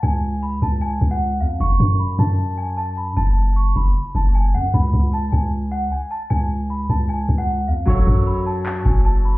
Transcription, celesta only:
\new Staff \with { instrumentName = "Celesta" } { \time 4/4 \key fis \minor \tempo 4 = 153 gis''4 b''8 a''8 gis''8. fis''8. eis''8 | cis'''4 b''8 a''4 gis''8 a''8 b''8 | a''4 cis'''8 b''4 a''8 gis''8 fis''8 | b''4 a''8 gis''4 fis''8 gis''8 a''8 |
gis''4 b''8 a''8 gis''8. fis''8. eis''8 | cis'''4 b''8 a''4 gis''8 a''8 b''8 | }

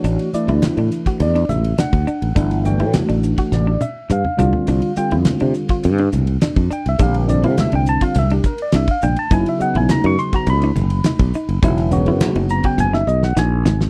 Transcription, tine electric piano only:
<<
  \new Staff \with { instrumentName = "Tine electric piano" } { \time 4/4 \key c \major \tempo 4 = 104 cis''8 d''8 r4 d''8 e''8 fis''4~ | fis''8 g''8 r4 d''8 e''8 f''4~ | f''8 g''8 r2 r8 g''16 e''16 | f''16 bes'16 d''16 f''16 e''16 g''16 a''16 f''16 e''16 g'16 bes'16 d''16 e''16 f''16 g''16 a''16 |
gis''16 e''16 fis''16 gis''16 bes''16 cis'''16 c'''16 bes''16 b''2 | r4. bes''16 g''16 gis''16 e''16 dis''16 fis''16 gis''8. r16 | }
  \new Staff \with { instrumentName = "Tine electric piano" } { \time 4/4 \key c \major <e a d' fis'>8 <e a d' e'>2 r4. | <e a d' e'>8 <e a d' fis'>2 r4 <d g c' f'>8~ | <d g c' f'>8 <d g c' f'>2 r4. | <d g c' g'>8 <d g c' d'>2 r4. |
<cis fis b e'>8 <cis fis b dis'>2 r4. | <cis fis b e'>8 <cis fis b fis'>2 r4. | }
>>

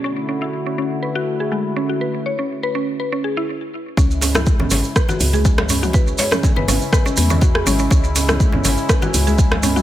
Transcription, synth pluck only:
\new Staff \with { instrumentName = "Synth pluck" } { \time 4/4 \key cis \phrygian \tempo 4 = 122 cis'16 r16 cis'16 e'16 r16 cis'16 cis'16 r16 b'16 fis'16 r16 gis'16 gis16 r16 cis'16 fis'16 | b'16 r16 cis''16 cis'16 r16 b'16 cis'16 r16 b'16 cis'16 gis'16 e'16 r4 | cis'16 r16 cis'16 e'16 r16 cis'16 cis'16 r16 b'16 fis'16 r16 gis'16 gis16 r16 cis'16 fis'16 | b'16 r16 cis''16 cis'16 r16 b'16 cis'16 r16 b'16 cis'16 b16 cis'16 fis'16 gis'16 cis'16 cis'16 |
cis'16 r16 cis'16 e'16 r16 cis'16 cis'16 r16 b'16 fis'16 r16 gis'16 gis16 r16 cis'16 fis'16 | }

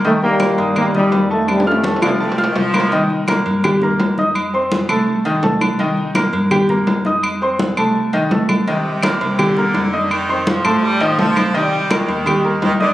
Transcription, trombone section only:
\new Staff \with { instrumentName = "Trombone section" } { \clef bass \time 4/4 \key c \dorian \tempo 4 = 167 << { a8 bes4. bes8 g4 a8 | g8 a4. r2 | r1 | r1 |
r1 | r1 | r1 | r1 |
r1 | } \\ { ees8 <ees g>4. <ees g>8 <bes, ees>4. | <c ees>8 <c ees>2 r4. | r1 | r1 |
r1 | r1 | r1 | r1 |
r1 | } >> }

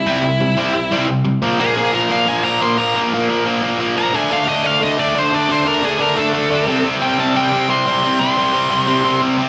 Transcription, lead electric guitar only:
\new Staff \with { instrumentName = "Lead electric guitar" } { \time 4/4 \key bes \lydian \tempo 4 = 177 <e' e''>2. r4 | r8 aes'4 bes'8 f''8 aes''8 bes''8 c'''8 | bes''8 r2. bes''8 | aes''8 f''8 ees''8 f''8 ees''8 d''8 c''8 d''8 |
c''8 bes'8 aes'8 bes'8 a'2 | r8 g''8 a''8 g''4 c'''4. | c'''2. r4 | }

